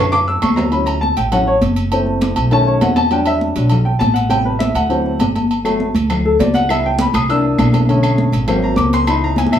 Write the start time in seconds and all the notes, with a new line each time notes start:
Already playing: F#2 D3 A3 C#4
0.00 C#6
0.12 D6, high conga, high timbale, low agogo
0.28 E6, high conga
0.42 D2 C#6, high conga, low agogo, claves
0.56 A#5, high conga, low timbale, low agogo
0.71 E3 F#3 C#4 B5, high conga, low agogo
0.86 A#5, high conga, low agogo
1.01 A5, high conga
1.17 A1 G5, high conga, low agogo
1.32 E3 F#3 C#4 F#5, high conga, low conga, low agogo
1.47 C#5, high conga
1.62 F#1, high conga, low agogo
1.76 low agogo
1.92 E3 A3 C4, high conga, low agogo
2.06 high conga
2.21 high conga, low agogo
2.36 B1, high conga, low agogo
2.51 D#3 A3 C#4 A5, high conga, low agogo
2.67 C#5, high conga
2.81 E2 F#5, high conga, low timbale, low agogo
2.96 A5, high conga, low agogo
3.11 F#3 G3 D4 G5, high conga, low agogo
3.26 E5, high conga, low agogo
3.41 high conga
3.55 B1 F#3 G3 D4, high conga, low agogo
3.70 high conga, low conga, low agogo
3.85 G5, high conga
3.99 A1 A5, high conga, low agogo
4.14 F#5, low agogo
4.29 C3 G3 B3 G5, high conga, low agogo
4.45 B4, high conga
4.59 E5, high conga, low agogo
4.75 D2 F#5, high conga, low agogo
4.89 E3 F#3 C4, high conga, low agogo
5.06 high conga
5.19 G1, high conga, low agogo
5.36 high conga, low agogo
5.51 high conga, low agogo
5.64 F#3 A3 B3, high conga, low agogo, claves
5.80 high conga
5.95 D2, high conga, low agogo
6.10 high conga, low conga, low agogo, claves
6.25 A4, high conga
6.39 C#2 D5, high conga, low timbale, low agogo
6.54 F#5, high conga, low agogo
6.69 E3 G3 B3 E5, high conga, low agogo, claves
6.84 G5, high conga
6.99 B5, high conga, low agogo
7.13 C2 D#6, high conga, low agogo, claves
7.28 E3 A#3 D4 E6, high conga, low agogo
7.44 high conga
7.58 B1, high conga, low agogo, claves
7.74 high conga, low agogo
7.89 D3 A3 C#4, high conga, low agogo
8.03 high conga, low agogo, claves
8.18 high conga
8.32 G#1, high conga, low agogo
8.48 F#3 A#3 C4, high conga, low conga, low agogo, claves
8.63 A#5, high conga
8.76 C#2 D6, high conga, low agogo
8.93 C6, low agogo
9.07 E3 B3 D#4 B5, high conga, low agogo, claves
9.22 A#5, high conga
9.36 G#5, high conga, low agogo
9.47 high conga
9.52 C2 E5, low agogo, claves